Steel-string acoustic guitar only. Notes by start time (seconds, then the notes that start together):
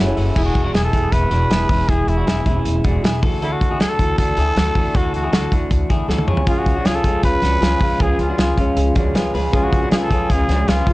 0.07 E4 F#4 C#5
0.36 E3 G#3 B3 E4
0.93 E3 G#3 B3 E4
1.30 E3 G#3 B3 E4
1.49 E3 G#3 B3 E4
1.68 E3 G#3 B3 E4
1.88 E3 G#3 B3 E4
2.45 E3 G#3 B3 E4
2.84 E3 G#3 B3 E4
3.03 E3 G#3 B3 E4
3.22 E3 A3 D4 F#4
3.41 D3 E3 A3 D4 F#4
3.98 E3 A3 D4 F#4
4.36 E3 A3 D4 F#4
4.56 E3 A3 D4 F#4
4.76 E3 A3 D4 F#4
4.94 D3 E3 A3 D4 F#4
5.51 E3 A3 D4 F#4
5.89 E3 A3 D4 F#4
6.08 E3 A3 D4 F#4
6.28 F3 G#3 C#4 F4
6.47 C#3 F3 G#3 C#4 F4
7.04 F3 G#3 C#4 F4
7.42 F3 G#3 C#4 F4
7.61 F3 G#3 C#4 F4
7.80 F3 G#3 C#4 F4
8.00 C#3 F3 G#3 C#4 F4
8.57 F3 G#3 C#4 F4
8.95 F3 G#3 C#4 F4
9.14 F3 G#3 C#4 F4
9.34 F3 G#3 C#4 F4
9.53 C#3 F3 G#3 C#4 F4
10.10 F3 G#3 C#4 F4
10.48 F3 G#3 C#4 F4
10.67 F3 G#3
10.86 F3 G#3 C#4 F4